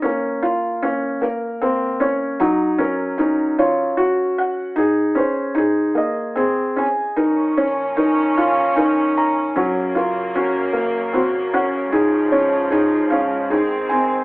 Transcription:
0.02 A#3 C#4
0.43 F4
0.83 A#3 C#4
1.22 A#3 A#4
1.62 A#3 C4
2.00 C#4 C#5
2.40 F#3 D#4
2.78 C#4 A#4
3.18 C#4 D#4
3.59 F4 C#5
3.97 F#4
4.38 F#5
4.76 D#4 G#4
5.15 C#4 C5
5.55 D#4 G#4
5.95 A#3 D#5
6.36 C4 G#4
6.76 C#4 G#5
7.16 A#2 F3 C#4 D#4 A#4
7.57 C#4 C#5
7.97 D#4 A#4
8.37 F4 F5
8.76 D#4 A#4
9.18 A#5
9.56 F#2 C#3 F#3 A#3 C#4
9.95 F4 A#4
10.35 C#4 F#4
10.73 A#3
11.13 C4 F#4
11.53 C#4 F#5
11.92 G#2 F3 D#4 G#4
12.32 C#4 C#5
12.70 D#4 G#4
13.10 C#4 F5
13.50 D#3 C4 D#4 G#4
13.89 C4 G#5

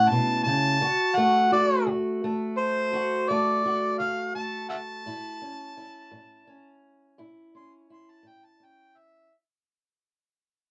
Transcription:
Already playing: C#4 E4 F#5
0.09 B2 A5
0.44 C#3 A5
0.81 D2 F#4
1.16 A3 F#5
1.52 F#4 D5
1.87 D2
2.24 A3
2.58 C5
2.93 D2 F#4
3.29 A3 D5
3.66 F#4
3.98 D2 F5
4.35 A3 A5
4.69 E5 F#5 A5
5.06 A2 E4
5.42 C#4
5.77 E4
6.12 A2
6.47 C#4
7.18 A2 E4
7.55 C#4 C6
7.90 E4 C6
8.11 A5
8.23 A2
8.28 G5
8.45 A5
8.60 C#4
8.65 G5
8.98 E5

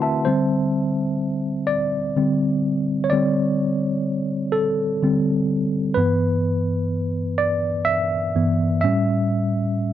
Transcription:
Already playing: D3 A3 C4 E4 F#4 A#4 B4 E5 F#5 A5 C6
0.02 E5 A5
0.25 D3 G3 C4 C5
1.67 D5
2.16 D3 G3 C4
3.04 C#5
3.10 D3 G3 C4 D5
4.52 A4
5.02 D3 G3 C4
5.94 G2 E3 B3 B4
7.38 D5
7.85 E5
8.35 G2 E3 B3
8.81 A2 G3 C#4 E5

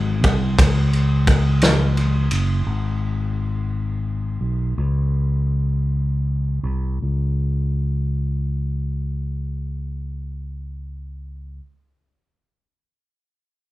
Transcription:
Already playing: G#1
0.23 C2, kick, ride
0.59 C#2, kick, ride
0.93 ride
1.27 kick, ride
1.61 snare, ride
1.97 ride
2.31 F#1, ride
2.66 G#1
4.41 B1
4.78 C#2
6.63 C2
7.02 C#2

